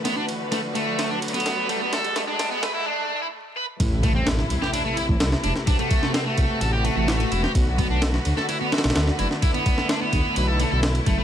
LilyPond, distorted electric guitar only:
\new Staff \with { instrumentName = "Distorted electric guitar" } { \time 4/4 \key a \dorian \tempo 4 = 128 b16 d'16 r8 a16 r16 a8. d'16 r16 b8. a16 b16 | a'8 a16 d'8 b16 b'16 e'16 d'8. e'16 r8 b'16 r16 | r8 a16 c'16 r8. g'16 d'16 a16 e'16 r8. d'16 r16 | d'16 a8. c'16 a8. a'16 g'16 a16 a8. e'16 g'16 |
r8 b16 d'16 r8. a'16 e'16 b16 fis'16 r8. e'16 r16 | e'16 b8. d'16 b8. b'16 a'16 a16 a'16 r8 a16 a16 | }